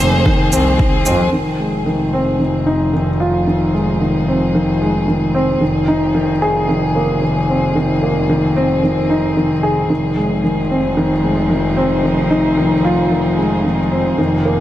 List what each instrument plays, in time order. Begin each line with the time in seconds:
Already playing: upright piano D#3 A#3 D#4 G#4, string quartet A#3 C4 G#4, violin C5
0.00 double bass section F1, upright piano C4
0.26 upright piano D#3, kick
0.52 double bass section C2, upright piano C4, shaker
0.79 upright piano D#3, kick
1.06 double bass section F2, upright piano C4, shaker
1.32 double bass section F1, upright piano D#3, string quartet F3
1.60 upright piano G#3
1.77 string quartet D#4
1.86 upright piano D#3
2.13 upright piano C4
2.40 upright piano D#3
2.66 upright piano D#4
2.93 upright piano D#3
3.20 upright piano F4
3.47 upright piano D#3
3.74 upright piano G#3
4.01 upright piano D#3
4.28 upright piano C4
4.55 upright piano D#3
4.81 upright piano G#3
5.08 upright piano D#3
5.35 upright piano C4
5.61 double bass section F1, upright piano D#3, string quartet A#3
5.88 upright piano D#4
6.15 upright piano D#3
6.42 upright piano G#4
6.69 upright piano D#3
6.96 upright piano A#3
7.22 upright piano D#3
7.49 upright piano C4
7.76 upright piano D#3
8.02 upright piano A#3
8.30 upright piano D#3
8.56 upright piano C4
8.83 upright piano D#3
9.10 upright piano D#4
9.37 upright piano D#3
9.63 upright piano G#4
9.90 double bass section F1, upright piano D#3, string quartet F3
10.17 upright piano G#3
10.44 upright piano D#3
10.62 string quartet D#4
10.70 upright piano C4
10.97 upright piano D#3
11.24 upright piano G#3
11.50 upright piano D#3
11.77 upright piano C4
12.04 upright piano D#3
12.31 upright piano D#4
12.57 upright piano D#3
12.84 upright piano F4
13.11 upright piano D#3
13.38 upright piano G#3
13.65 upright piano D#3
13.92 upright piano C4
14.18 double bass section F1, upright piano D#3, string quartet A#3
14.45 upright piano A#3